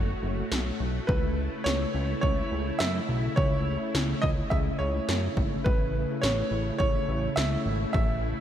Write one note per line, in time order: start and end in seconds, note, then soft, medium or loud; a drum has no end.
0.00 0.14 F#1 loud
0.00 1.05 A2 medium
0.00 5.62 A3 medium
0.00 1.05 F#4 medium
0.00 0.75 C#5 medium
0.23 0.43 F#1 loud
0.52 0.72 B1 loud
0.52 snare loud
0.80 1.00 B1 loud
1.07 1.49 C#2 loud
1.07 8.40 C#3 medium
1.07 5.62 E4 medium
1.07 1.67 B4 medium
1.07 kick loud
1.64 1.86 C#2 loud
1.64 2.20 C#5 medium
1.64 snare loud
1.95 2.15 C#2 loud
2.21 2.43 C#2 loud
2.21 2.75 C#5 medium
2.21 kick medium
2.52 2.72 C#2 loud
2.79 3.00 F#2 medium
2.79 3.38 E5 loud
2.79 snare loud
3.09 3.29 B1 medium
3.36 3.77 C#2 loud
3.36 4.25 C#5 medium
3.36 kick loud
3.94 4.14 C#2 loud
3.94 snare loud
4.22 4.43 C#2 loud
4.22 4.28 D#5 medium
4.22 kick medium
4.50 4.72 C#2 loud
4.50 4.57 E5 medium
4.50 kick medium
4.79 5.00 C#2 loud
4.79 5.33 C#5 medium
5.09 5.29 F#2 medium
5.09 snare loud
5.37 5.57 G#1 medium
5.37 kick loud
5.64 6.06 A1 loud
5.64 8.40 A3 medium
5.64 8.40 E4 loud
5.64 6.24 B4 medium
5.64 kick loud
6.22 6.43 A1 loud
6.22 6.77 C#5 medium
6.22 snare loud
6.51 6.71 A1 loud
6.79 7.00 A1 loud
6.79 7.38 C#5 medium
6.79 kick medium
7.09 7.29 A1 loud
7.36 7.57 C#2 loud
7.36 7.92 E5 loud
7.36 snare loud
7.66 7.86 G#1 medium
7.93 8.34 A1 loud
7.93 8.40 E5 loud
7.93 kick loud